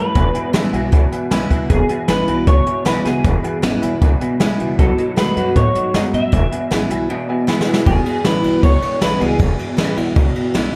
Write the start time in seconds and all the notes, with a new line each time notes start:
Already playing: F#2 A2 E3 B4
0.15 E1 E2 B2 B4 E5 G#5, kick, closed hi-hat
0.34 E2 B2 B4 E5 G#5, muted upright bass stroke, closed hi-hat
0.53 A1 E2 C#3 E3 G#3 B3 E4 B4 E5 G#5, snare, closed hi-hat
0.73 B1 E2 B2 B3 E4 B4 E5 G#5, closed hi-hat
0.92 C#2 E2 B2 B4 E5 G#5, kick, closed hi-hat
1.11 E2 B2 B4 E5 G#5, muted upright bass stroke, closed hi-hat
1.30 B1 E2 C#3 E3 G#3 B3 E4 B4 E5 G#5, snare, closed hi-hat
1.50 C#2 E2 B2 B3 E4 B4 E5 G#5, kick, closed hi-hat
1.69 E1 E2 B2 G#4 B4 E5 G#5, kick, closed hi-hat
1.88 E2 B2 B4 E5 G#5, muted upright bass stroke, closed hi-hat
2.08 A1 E2 C#3 E3 G#3 B3 E4 B4 E5 G#5, snare, closed hi-hat
2.27 B1 E2 B2 B3 E4 B4 E5 G#5, closed hi-hat
2.46 C#2 E2 B2 B4 C#5 E5 G#5, kick, closed hi-hat
2.66 E2 B2 B4 E5 G#5, muted upright bass stroke, closed hi-hat
2.85 B1 E2 C#3 E3 G#3 B3 E4 B4 E5 G#5, snare, closed hi-hat
3.04 C#2 E2 B2 B3 E4 G#4 B4 E5 G#5, snare, closed hi-hat
3.24 E1 E2 B2 B4 E5 G#5, kick, closed hi-hat
3.43 E2 B2 B4 E5 G#5, muted upright bass stroke, closed hi-hat
3.62 A1 E2 C#3 E3 G#3 B3 E4 B4 E5 B5, snare, closed hi-hat
3.82 B1 E2 B2 B3 E4 B4 E5 G#5, closed hi-hat
4.01 C#2 E2 B2 B4 E5 G#5, kick, closed hi-hat
4.20 E2 B2 B4 E5 G#5, muted upright bass stroke, closed hi-hat
4.40 B1 E2 C#3 E3 G#3 B3 E4 B4 E5 G#5, snare, closed hi-hat
4.59 C#2 E2 B2 B3 E4 B4 E5 G#5 B5, closed hi-hat
4.78 B1 B2 F#3 A4 B4 D#5 F#5, kick, closed hi-hat
4.97 B2 F#3 B4 D#5 A5, closed hi-hat
5.16 E2 B2 D#3 G#3 A3 B3 F#4 B4 D#5 F#5, snare, closed hi-hat
5.36 F#2 B2 F#3 B3 F#4 B4 D#5 F#5, closed hi-hat
5.55 G#2 A2 B2 F#3 B4 C#5 D#5 F#5, kick, closed hi-hat
5.75 B2 F#3 B4 D#5 F#5, muted upright bass stroke, closed hi-hat
5.94 F#2 B2 G#3 B4 D#5 F#5, snare, closed hi-hat
6.13 A2 B2 F#3 B4 D#5 E5 F#5, closed hi-hat
6.32 E1 E2 B2 B4 E5 G#5, kick, closed hi-hat
6.51 E2 B2 B4 E5 G#5, muted upright bass stroke, closed hi-hat
6.71 A1 E2 C#3 E3 G#3 B3 E4 B4 E5 G#5, snare, closed hi-hat
6.90 B1 E2 B2 B3 E4 B4 E5 G#5, closed hi-hat
7.09 E2 B2 B4 E5 G#5
7.29 E2 B2 B4 E5 G#5
7.47 E2 C#3 E3 G#3 B3 E4 B4 E5 G#5 B5, snare
7.61 snare
7.67 E2 B2 B4 E5 G#5
7.74 snare
7.86 E1 E2 B2 G#4, kick, ride
8.05 E2 B2, muted upright bass stroke, ride
8.24 A1 E2 C#3 E3 G#3 B3 E4 B4, snare, ride
8.43 B1 E2 B2, ride
8.62 C#2 E2 B2 C#5, kick, ride
8.82 E2 B2, ride
9.01 B1 E2 C#3 E3 G#3 B3 E4 B4, snare, ride
9.20 C#2 E2 B2 G#4, ride
9.39 E1 E2 B2, kick, ride
9.59 E2 B2, muted upright bass stroke, ride
9.77 A1 E2 C#3 E3 G#3 B3 E4, snare, ride
9.96 B1 E2 B2 B3 E4, ride
10.16 C#2 E2 B2, kick, ride
10.35 E2 B2, muted upright bass stroke, ride
10.54 B1 E2 C#3 E3 G#3 B3 E4, snare, ride